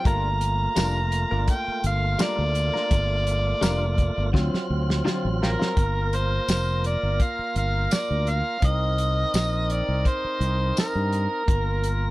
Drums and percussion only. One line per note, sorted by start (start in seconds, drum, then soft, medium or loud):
0.05 kick loud
0.05 closed hi-hat medium
0.41 closed hi-hat medium
0.76 snare loud
0.76 closed hi-hat medium
0.76 tambourine loud
1.12 closed hi-hat medium
1.48 kick medium
1.48 closed hi-hat medium
1.84 closed hi-hat medium
2.19 snare loud
2.19 closed hi-hat medium
2.19 tambourine loud
2.55 closed hi-hat medium
2.76 snare soft
2.91 kick loud
2.91 closed hi-hat medium
3.27 closed hi-hat medium
3.62 snare medium
3.62 closed hi-hat medium
3.62 tambourine loud
3.98 kick medium
3.98 closed hi-hat medium
4.34 kick medium
4.34 snare medium
4.54 snare medium
4.90 snare medium
5.07 snare medium
5.43 snare medium
5.62 snare medium
5.77 kick loud
5.77 closed hi-hat medium
6.13 closed hi-hat medium
6.48 snare loud
6.48 closed hi-hat medium
6.48 tambourine medium
6.84 closed hi-hat medium
7.20 kick medium
7.20 closed hi-hat medium
7.56 closed hi-hat medium
7.91 snare loud
7.91 closed hi-hat medium
7.91 tambourine loud
8.27 closed hi-hat medium
8.62 kick loud
8.62 closed hi-hat medium
8.98 closed hi-hat medium
9.34 snare loud
9.34 closed hi-hat medium
9.34 tambourine loud
9.70 closed hi-hat medium
10.05 kick medium
10.05 closed hi-hat medium
10.41 closed hi-hat medium
10.77 snare loud
10.77 closed hi-hat medium
10.77 tambourine medium
11.13 closed hi-hat medium
11.48 kick loud
11.48 closed hi-hat medium
11.84 closed hi-hat medium